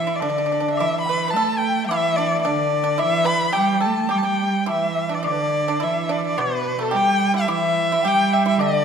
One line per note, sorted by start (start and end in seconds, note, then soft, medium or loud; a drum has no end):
0.00 0.23 E3 medium
0.00 0.17 E5 medium
0.05 0.20 E4 medium
0.05 0.21 E5 medium
0.16 0.72 D5 medium
0.16 0.78 D5 medium
0.20 0.81 D3 medium
0.20 0.28 D4 medium
0.20 high woodblock soft
0.20 low woodblock soft
0.30 0.36 D4 soft
0.38 0.44 D4 medium
0.46 0.51 D4 soft
0.52 0.59 D4 medium
0.60 0.67 D4 soft
0.68 0.74 D4 soft
0.72 1.00 E5 medium
0.77 1.36 E3 medium
0.77 1.06 E4 medium
0.77 1.08 E5 medium
0.77 high woodblock medium
1.01 1.32 B5 medium
1.06 1.27 B4 medium
1.06 1.32 B5 medium
1.28 1.35 B4 medium
1.28 1.60 A5 medium
1.33 1.89 A3 medium
1.33 1.87 A4 medium
1.33 1.61 A5 medium
1.33 low woodblock soft
1.58 1.86 G5 medium
1.58 1.88 G5 medium
1.86 2.47 E3 medium
1.86 2.17 E5 medium
1.86 2.48 E5 medium
1.86 high woodblock medium
1.91 2.16 E4 medium
2.16 2.44 D4 medium
2.16 2.41 D5 medium
2.42 3.01 D3 medium
2.42 2.82 D4 medium
2.42 3.00 D5 medium
2.42 low woodblock soft
2.46 3.01 D5 medium
2.84 2.98 D4 medium
2.98 3.25 E4 medium
2.98 3.27 E5 loud
2.98 3.29 E5 medium
2.98 high woodblock medium
3.03 3.53 E3 medium
3.25 3.52 B4 medium
3.25 3.55 B5 loud
3.25 3.56 B5 medium
3.53 3.87 G3 medium
3.53 3.80 G4 medium
3.53 3.83 G5 medium
3.53 4.09 G5 medium
3.53 low woodblock soft
3.80 4.08 A4 medium
3.80 4.12 A5 medium
3.85 4.12 A3 medium
4.09 4.25 G3 medium
4.09 4.22 G4 medium
4.09 4.23 G5 medium
4.09 4.19 G5 medium
4.09 high woodblock medium
4.18 4.26 A5 medium
4.23 4.92 G4 medium
4.23 4.65 G5 medium
4.23 4.68 G5 medium
4.27 4.66 G3 medium
4.66 5.07 E4 medium
4.66 4.99 E5 medium
4.66 high woodblock soft
4.66 low woodblock soft
4.71 5.27 E3 medium
4.71 5.16 E5 medium
5.09 5.22 D4 medium
5.14 5.25 D5 medium
5.23 5.85 D3 medium
5.23 5.64 D4 medium
5.23 5.33 D5 medium
5.23 5.85 D5 medium
5.23 high woodblock medium
5.31 5.42 B4 medium
5.41 5.67 D5 medium
5.67 5.80 D4 medium
5.67 5.85 D5 medium
5.80 6.41 E3 medium
5.80 6.07 E4 medium
5.80 6.13 E5 medium
5.80 6.38 E5 medium
6.09 6.36 D4 medium
6.09 6.25 D5 medium
6.27 6.42 D5 medium
6.38 6.95 B2 medium
6.38 6.77 B3 medium
6.38 6.77 B4 medium
6.38 6.84 B4 medium
6.38 high woodblock medium
6.79 6.91 A3 medium
6.79 6.95 A4 medium
6.79 6.97 A4 medium
6.91 7.48 G3 medium
6.91 7.31 G4 medium
6.91 7.38 G5 medium
6.96 7.36 G5 medium
7.34 7.47 E4 medium
7.34 7.48 E5 medium
7.39 7.43 B5 soft
7.43 7.51 G5 soft
7.43 7.45 A5 soft
7.48 8.06 E3 medium
7.48 7.87 E4 medium
7.48 7.90 E5 medium
7.48 high woodblock medium
7.53 8.09 E5 medium
7.92 8.04 E4 medium
7.92 8.04 E5 medium
8.02 8.59 G3 medium
8.02 8.43 G4 medium
8.02 8.61 G5 medium
8.08 8.35 G5 medium
8.33 8.46 E5 medium
8.46 8.58 E4 medium
8.46 8.59 E5 medium
8.58 8.85 D3 medium
8.58 8.85 D4 medium
8.58 8.85 D5 medium
8.58 high woodblock medium
8.62 8.85 D5 medium